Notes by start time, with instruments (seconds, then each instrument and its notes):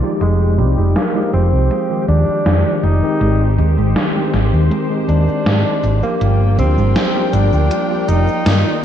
Already playing: string section F4 D5 A#5
0.02 tine electric piano F3 G#3 D#4 G4, cabasa
0.20 fingered electric bass F1, clean electric guitar G#3 D#4 G4, tenor saxophone G#3, string section G4, closed hi-hat
0.58 fingered electric bass C2, tine electric piano F3 G3 D#4 G4, tenor saxophone G3, closed hi-hat, cabasa
0.77 fingered electric bass F1, clean electric guitar G#3 D#4 G4, cabasa
0.96 tenor saxophone A#3, snare, closed hi-hat
1.14 tine electric piano F3 G#3 D#4 G4, clean electric guitar G#3 D#4 F4
1.33 fingered electric bass F1, tenor saxophone C4, closed hi-hat, cabasa
1.53 fingered electric bass C2, cabasa
1.70 clean electric guitar G#3 D#4 G4, closed hi-hat, cabasa
1.89 tine electric piano D#3 F3 G#3 G4
2.08 fingered electric bass D#2, tenor saxophone D4, closed hi-hat, cabasa
2.28 cabasa
2.45 fingered electric bass F2, tine electric piano D#3 F3 G#3 G4, snare, closed hi-hat
2.83 fingered electric bass F1, tenor saxophone D#4, muted clean electric guitar stroke, closed hi-hat, cabasa
3.02 tine electric piano D#3 G#3 C4 G4, cabasa
3.20 fingered electric bass G#1, clean electric guitar G#3 C4 G4, string section C5, closed hi-hat, cabasa
3.58 fingered electric bass D#2, tine electric piano D#3 G#3 C4 G4, closed hi-hat, cabasa
3.77 fingered electric bass G#1, clean electric guitar G#3 C4 G4, cabasa
3.96 snare, closed hi-hat, cabasa
4.14 tine electric piano D#3 G#3 C4 G4, clean electric guitar G#3 C4 G4
4.34 fingered electric bass G#1, snare, closed hi-hat, cabasa
4.53 fingered electric bass D#2, cabasa
4.70 clean electric guitar G#3 C4 A#4, closed hi-hat, cabasa
4.90 tine electric piano D#3 G#3 C4 G4
5.08 fingered electric bass D#2, tenor saxophone D4, closed hi-hat, cabasa
5.28 muted fingered electric bass stroke, cabasa
5.45 fingered electric bass G#2, tine electric piano D#3 G#3 C4 G4, snare, closed hi-hat, cabasa
5.83 fingered electric bass G#1, muted clean electric guitar stroke, closed hi-hat, cabasa
6.02 tine electric piano F3 A#3 D4 G4, tenor saxophone A#3, cabasa
6.20 fingered electric bass G1, clean electric guitar G3 A#3 F4, string section F4 A#4 G5, closed hi-hat, cabasa
6.58 fingered electric bass D2, tine electric piano F3 A#3 D4 G4, tenor saxophone C4, closed hi-hat, cabasa
6.77 fingered electric bass G1, clean electric guitar G3 A#3 F4, cabasa
6.96 snare, closed hi-hat, cabasa
7.14 tine electric piano F3 A#3 D4 G4, clean electric guitar G3 A#3 F4
7.33 fingered electric bass G1, tenor saxophone D4, closed hi-hat, cabasa
7.53 fingered electric bass D2, cabasa
7.70 clean electric guitar G3 A#3 F4, closed hi-hat, cabasa
7.89 tine electric piano F3 A#3 G4 D5
8.09 fingered electric bass F1, tenor saxophone D#4, closed hi-hat, cabasa
8.28 muted fingered electric bass stroke, cabasa
8.45 fingered electric bass G2, tine electric piano D#3 A#3 F4 D5, snare, closed hi-hat, cabasa